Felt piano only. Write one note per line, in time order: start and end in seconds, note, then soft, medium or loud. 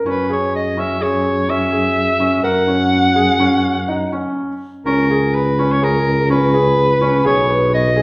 0.06 0.25 C#4 medium
0.30 0.67 G#4 medium
0.77 0.96 C#4 medium
1.01 1.39 G#4 medium
1.49 1.68 C#4 medium
1.72 2.10 G#4 medium
2.20 2.39 C#4 medium
2.43 2.63 A#4 medium
2.67 3.06 C#4 medium
3.16 3.35 G#4 medium
3.40 3.78 C#4 medium
3.88 4.07 D#4 medium
4.12 4.51 C#4 medium
4.86 5.05 C#4 medium
5.10 5.48 G#4 medium
5.59 5.77 C#4 medium
5.82 6.20 G#4 medium
6.30 6.49 C#4 medium
6.54 6.91 G#4 medium
7.01 7.20 C#4 medium
7.25 7.44 G#4 medium
7.49 7.87 B3 medium
7.96 8.02 G#4 medium